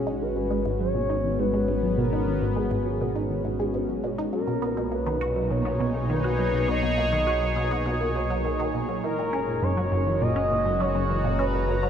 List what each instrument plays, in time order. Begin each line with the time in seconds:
Already playing: analog synth bass G#1, analog synth pad G#3 C#4 F#4, analog synth lead G#4
0.07 synth arpeggio sound D#4
0.21 synth arpeggio sound D#3, analog synth lead B4
0.36 synth arpeggio sound G#2
0.51 synth arpeggio sound G#3
0.66 synth arpeggio sound G#2
0.80 synth arpeggio sound F#3, analog synth lead C#5
0.95 synth arpeggio sound B2
1.03 analog synth pad B3
1.10 synth arpeggio sound D#4
1.24 synth arpeggio sound D#3
1.39 synth arpeggio sound G#2, analog synth lead B4
1.54 synth arpeggio sound G#3
1.68 synth arpeggio sound G#2
1.83 synth arpeggio sound F#3
1.98 synth arpeggio sound B2, analog synth lead A#4
2.13 synth arpeggio sound D#4
2.27 synth arpeggio sound D#3
2.42 synth arpeggio sound G#2
2.57 synth arpeggio sound G#3, analog synth lead G#4
2.71 synth arpeggio sound G#2
2.86 synth arpeggio sound F#3
3.01 synth arpeggio sound B2
3.15 synth arpeggio sound D#4
3.30 synth arpeggio sound D#3
3.45 synth arpeggio sound G#2
3.60 synth arpeggio sound G#3
3.74 synth arpeggio sound G#2
3.89 synth arpeggio sound F#3
4.04 synth arpeggio sound B2
4.18 synth arpeggio sound D#4
4.33 analog synth bass B1, analog synth pad A#2, synth arpeggio sound F#3, analog synth lead A#4
4.48 synth arpeggio sound B2
4.62 synth arpeggio sound B3
4.77 synth arpeggio sound B2
4.92 synth arpeggio sound A#3, analog synth lead B4
4.99 analog synth pad D#4
5.06 synth arpeggio sound D#3
5.21 synth arpeggio sound F#4
5.36 synth arpeggio sound F#3
5.51 synth arpeggio sound B2, analog synth pad C#5, analog synth lead C#5
5.65 synth arpeggio sound B3, analog synth pad G#4
5.80 synth arpeggio sound B2
5.95 synth arpeggio sound A#3
6.10 synth arpeggio sound D#3, analog synth lead B4
6.24 synth arpeggio sound F#4
6.39 synth arpeggio sound F#3
6.54 synth arpeggio sound B2
6.68 synth arpeggio sound B3, analog synth lead D#5
6.83 synth arpeggio sound B2
6.98 synth arpeggio sound A#3
7.12 synth arpeggio sound D#3
7.27 synth arpeggio sound F#4
7.42 synth arpeggio sound F#3
7.56 synth arpeggio sound B2
7.71 synth arpeggio sound B3
7.86 synth arpeggio sound B2
8.01 synth arpeggio sound A#3
8.15 synth arpeggio sound F#3
8.30 synth arpeggio sound F#3
8.45 synth arpeggio sound D#3
8.59 synth arpeggio sound D#3
8.74 synth arpeggio sound B2
8.89 synth arpeggio sound F#3
9.03 analog synth bass F#1, synth arpeggio sound E3, analog synth pad G#3, analog synth lead A#4
9.19 synth arpeggio sound A#2
9.33 synth arpeggio sound C#4
9.48 synth arpeggio sound A#2, analog synth pad C#4
9.62 synth arpeggio sound F#2, analog synth lead C#5
9.77 synth arpeggio sound F#3
9.92 synth arpeggio sound F#2, analog synth pad F#4
10.07 synth arpeggio sound E3
10.21 synth arpeggio sound A#2, analog synth lead D#5
10.36 synth arpeggio sound C#4
10.51 synth arpeggio sound A#2
10.65 synth arpeggio sound F#2
10.80 synth arpeggio sound F#3, analog synth lead C#5
10.95 synth arpeggio sound F#2
11.10 synth arpeggio sound E3
11.15 analog synth pad A#5
11.24 synth arpeggio sound A#2
11.39 synth arpeggio sound C#4, analog synth lead B4
11.54 synth arpeggio sound A#2
11.68 synth arpeggio sound F#2
11.83 synth arpeggio sound F#3